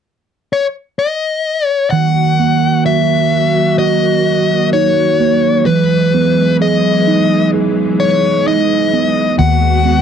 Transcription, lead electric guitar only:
0.53 0.65 C#5 medium
0.99 1.67 D#5 medium
1.67 1.90 C#5 medium
1.91 2.85 F#5 medium
2.86 3.76 E5 medium
3.79 4.69 D#5 medium
4.73 5.66 C#5 medium
5.66 6.56 B4 medium
6.62 7.50 D#5 medium
8.00 8.47 C#5 medium
8.48 9.35 D#5 medium
9.39 10.02 F#5 medium

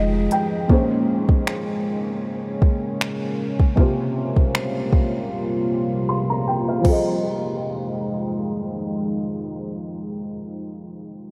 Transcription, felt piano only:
0.00 0.65 F3 medium
0.00 0.65 C4 medium
0.00 0.66 G4 medium
0.00 0.66 G#4 medium
0.00 0.29 D#5 medium
0.32 0.67 G5 medium
0.68 3.72 A#2 medium
0.68 3.73 A#3 medium
0.68 3.74 C#4 medium
0.68 3.74 G#4 medium
0.73 3.75 C5 medium
3.76 6.80 C3 medium
3.76 6.81 A#3 medium
3.76 6.81 F4 medium
3.76 6.82 G4 medium
3.81 6.83 C5 medium
6.09 6.28 C6 medium
6.30 6.46 A#5 medium
6.47 6.67 G5 medium
6.68 7.04 F5 medium
6.81 10.29 F3 medium
6.81 10.31 C4 medium
6.86 10.34 G4 medium
6.86 10.36 G#4 medium
6.91 10.39 D#5 medium

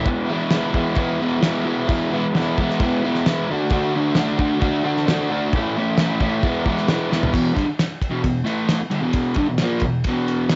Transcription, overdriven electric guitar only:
0.06 0.29 E3 medium
0.06 0.31 G#3 loud
0.06 0.31 B3 loud
0.06 0.31 E4 loud
0.30 0.51 E3 medium
0.30 0.52 G#3 medium
0.30 0.53 B3 medium
0.30 0.54 E4 loud
0.52 0.72 E3 medium
0.52 0.73 G#3 medium
0.52 0.74 B3 loud
0.52 0.75 E4 loud
0.73 0.95 E3 medium
0.73 0.96 G#3 medium
0.73 0.97 B3 medium
0.73 0.98 E4 loud
0.96 1.20 E3 loud
0.96 1.20 G#3 loud
0.96 1.20 B3 loud
0.96 1.21 E4 loud
1.21 1.40 E3 medium
1.21 1.41 G#3 medium
1.21 1.41 B3 medium
1.21 1.42 E4 medium
1.41 1.64 E3 medium
1.41 1.65 G#3 medium
1.41 1.66 B3 loud
1.41 1.66 E4 medium
1.65 1.86 E3 medium
1.65 1.87 G#3 medium
1.65 1.88 B3 medium
1.65 1.88 E4 loud
1.87 2.11 E3 loud
1.87 2.11 G#3 medium
1.87 2.12 B3 loud
1.87 2.13 E4 loud
2.12 2.32 E3 medium
2.12 2.33 G#3 medium
2.12 2.34 B3 medium
2.12 2.35 E4 medium
2.33 2.57 E3 medium
2.33 2.58 G#3 medium
2.33 2.58 B3 medium
2.33 2.59 E4 loud
2.58 2.80 E3 medium
2.58 2.81 G#3 medium
2.58 2.81 B3 medium
2.58 2.82 E4 loud
2.81 3.02 E3 medium
2.81 3.03 G#3 medium
2.81 3.04 B3 loud
2.81 3.04 E4 loud
3.03 3.25 E3 medium
3.03 3.25 G#3 medium
3.03 3.26 B3 medium
3.03 3.28 E4 loud
3.26 3.47 E3 medium
3.26 3.47 G#3 medium
3.26 3.47 B3 loud
3.26 3.48 E4 loud
3.50 3.70 D3 medium
3.50 3.70 A3 medium
3.50 3.72 D4 loud
3.50 3.72 F#4 loud
3.71 3.94 D3 loud
3.71 3.94 A3 medium
3.71 3.95 D4 loud
3.71 3.96 F#4 loud
3.95 4.15 D3 medium
3.95 4.16 A3 medium
3.95 4.16 D4 loud
3.95 4.17 F#4 loud
4.16 4.37 D3 medium
4.16 4.38 A3 medium
4.16 4.39 D4 loud
4.16 4.39 F#4 medium
4.38 4.59 D3 medium
4.38 4.60 A3 medium
4.38 4.61 D4 medium
4.38 4.61 F#4 medium
4.60 4.83 D3 loud
4.60 4.83 A3 medium
4.60 4.84 D4 loud
4.60 4.85 F#4 loud
4.84 5.06 D3 medium
4.84 5.06 A3 medium
4.84 5.07 D4 loud
4.84 5.07 F#4 medium
5.07 5.29 D3 medium
5.07 5.30 A3 medium
5.07 5.31 D4 medium
5.07 5.31 F#4 medium
5.30 5.51 D3 medium
5.30 5.51 A3 medium
5.30 5.52 D4 medium
5.30 5.52 F#4 medium
5.54 5.75 A2 medium
5.54 5.76 E3 medium
5.54 5.77 A3 loud
5.54 5.77 C#4 loud
5.54 5.77 E4 loud
5.77 5.97 A2 medium
5.77 5.98 E3 medium
5.77 5.99 A3 medium
5.77 5.99 C#4 medium
5.77 6.00 E4 loud
5.98 6.18 A2 medium
5.98 6.19 E3 loud
5.98 6.21 A3 loud
5.98 6.20 C#4 loud
5.98 6.21 E4 medium
6.20 6.41 A2 medium
6.20 6.41 E3 medium
6.20 6.42 A3 medium
6.20 6.42 C#4 medium
6.20 6.42 E4 medium
6.43 6.65 E3 medium
6.43 6.66 G#3 medium
6.43 6.66 B3 loud
6.43 6.67 E4 loud
6.66 6.87 E3 medium
6.66 6.87 G#3 medium
6.66 6.89 B3 medium
6.66 6.89 E4 loud
6.88 7.09 E3 medium
6.88 7.10 G#3 medium
6.88 7.11 B3 medium
6.88 7.11 E4 medium
7.10 7.31 E3 medium
7.10 7.32 G#3 medium
7.10 7.33 B3 medium
7.10 7.33 E4 loud
7.32 7.54 E2 medium
7.32 7.54 B2 medium
7.32 7.55 E3 loud
7.54 7.66 G2 medium
7.54 7.66 D3 loud
7.67 muted overdriven electric guitar stroke medium
8.11 8.22 E2 medium
8.11 8.23 B2 loud
8.24 8.42 E2 medium
8.24 8.43 B2 medium
8.45 8.79 A2 medium
8.45 8.79 E3 medium
8.45 8.80 A3 medium
8.82 muted overdriven electric guitar stroke medium
8.91 9.02 G2 medium
8.91 9.02 D3 medium
9.02 9.36 E2 medium
9.02 9.37 B2 loud
9.02 9.37 E3 loud
9.36 9.47 G2 medium
9.36 9.48 D3 loud
9.49 9.60 E2 medium
9.49 9.60 B2 medium
9.62 9.83 A#2 loud
9.62 9.83 F3 loud
9.62 9.83 A#3 loud
9.83 10.01 E2 medium
9.83 10.01 B2 medium
10.07 10.55 E2 medium
10.07 10.55 B2 loud
10.07 10.55 E3 loud

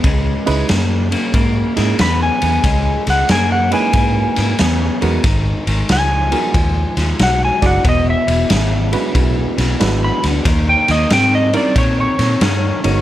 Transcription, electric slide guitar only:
0.00 0.46 B4 medium
2.01 2.21 B5 loud
2.23 3.06 G#5 loud
3.10 3.30 F#5 medium
3.31 3.51 G#5 medium
3.52 3.72 F#5 medium
3.74 4.99 G#5 medium
5.92 7.17 G#5 loud
7.23 7.42 F#5 loud
7.45 7.64 G#5 medium
7.66 7.86 F#5 medium
7.89 8.08 D#5 loud
8.10 9.35 E5 medium
10.04 10.24 B5 loud
10.69 10.89 G5 loud
10.91 11.11 D#5 medium
11.13 11.33 G5 loud
11.35 11.55 D#5 medium
11.57 11.77 D5 medium
11.78 11.98 C#5 loud
12.00 13.01 C#5 loud

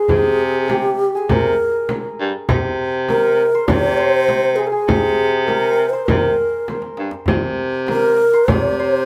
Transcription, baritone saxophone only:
0.09 1.12 C3 medium
1.29 1.55 C3 medium
2.20 2.32 G2 medium
2.49 3.52 C3 medium
3.69 4.72 C3 medium
4.88 5.92 C3 medium
6.08 6.34 C3 medium
6.99 7.12 G2 medium
7.28 8.32 C3 medium
8.49 9.05 C3 medium

